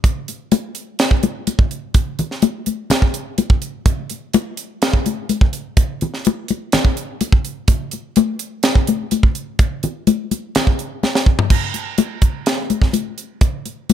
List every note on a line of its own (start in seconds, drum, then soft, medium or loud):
0.04 kick loud
0.04 closed hi-hat medium
0.04 muted conga soft
0.28 closed hi-hat medium
0.28 muted conga soft
0.52 closed hi-hat medium
0.52 muted conga soft
0.52 high conga medium
0.75 closed hi-hat medium
0.99 snare loud
0.99 closed hi-hat medium
0.99 muted conga soft
1.11 kick medium
1.23 closed hi-hat medium
1.23 high conga medium
1.47 closed hi-hat medium
1.47 high conga medium
1.59 kick medium
1.71 closed hi-hat soft
1.94 kick loud
1.94 closed hi-hat medium
1.94 muted conga soft
2.19 closed hi-hat medium
2.19 muted conga soft
2.19 low conga medium
2.31 snare soft
2.42 closed hi-hat medium
2.42 muted conga soft
2.42 high conga medium
2.66 closed hi-hat medium
2.66 high conga medium
2.90 snare loud
2.90 closed hi-hat medium
2.90 muted conga soft
2.90 low conga medium
3.02 kick medium
3.14 closed hi-hat medium
3.38 closed hi-hat medium
3.38 high conga medium
3.50 kick medium
3.62 closed hi-hat medium
3.86 kick loud
3.86 closed hi-hat medium
3.86 muted conga soft
4.10 closed hi-hat medium
4.10 muted conga soft
4.33 closed hi-hat medium
4.33 muted conga soft
4.33 high conga medium
4.57 closed hi-hat medium
4.82 snare loud
4.82 closed hi-hat medium
4.82 muted conga soft
4.93 kick medium
5.06 closed hi-hat medium
5.06 high conga medium
5.29 closed hi-hat medium
5.29 high conga medium
5.41 kick medium
5.53 closed hi-hat medium
5.77 kick loud
5.77 closed hi-hat medium
5.77 muted conga soft
6.01 closed hi-hat medium
6.01 muted conga soft
6.01 low conga medium
6.14 snare soft
6.25 closed hi-hat medium
6.25 muted conga soft
6.25 high conga medium
6.48 closed hi-hat medium
6.48 high conga medium
6.72 snare loud
6.72 closed hi-hat medium
6.72 muted conga soft
6.72 low conga medium
6.85 kick medium
6.97 closed hi-hat medium
7.21 closed hi-hat medium
7.21 high conga medium
7.32 kick medium
7.45 closed hi-hat medium
7.68 kick loud
7.68 closed hi-hat medium
7.68 muted conga soft
7.91 closed hi-hat medium
7.91 muted conga soft
8.16 closed hi-hat medium
8.16 muted conga soft
8.16 high conga loud
8.39 closed hi-hat medium
8.63 snare loud
8.63 closed hi-hat medium
8.63 muted conga soft
8.75 kick medium
8.87 closed hi-hat medium
8.87 high conga medium
9.11 closed hi-hat medium
9.11 high conga medium
9.23 kick medium
9.35 closed hi-hat soft
9.59 kick loud
9.59 closed hi-hat medium
9.59 muted conga soft
9.83 closed hi-hat medium
9.83 muted conga soft
9.83 low conga medium
10.07 closed hi-hat medium
10.07 muted conga soft
10.07 high conga medium
10.31 closed hi-hat medium
10.31 high conga medium
10.55 snare loud
10.55 closed hi-hat medium
10.55 muted conga soft
10.55 low conga medium
10.67 kick medium
10.79 closed hi-hat medium
11.03 snare medium
11.03 high conga medium
11.15 snare medium
11.26 kick medium
11.39 floor tom medium
11.50 kick medium
11.50 crash medium
11.50 muted conga soft
11.74 closed hi-hat medium
11.74 muted conga soft
11.98 closed hi-hat medium
11.98 high conga medium
12.22 kick medium
12.22 closed hi-hat medium
12.22 muted conga soft
12.46 snare loud
12.46 closed hi-hat medium
12.46 muted conga soft
12.70 closed hi-hat medium
12.70 high conga medium
12.82 kick medium
12.82 snare soft
12.93 closed hi-hat medium
12.93 high conga medium
13.18 closed hi-hat soft
13.41 kick loud
13.41 closed hi-hat medium
13.41 muted conga soft
13.66 closed hi-hat medium
13.66 muted conga soft
13.89 closed hi-hat medium
13.89 high conga medium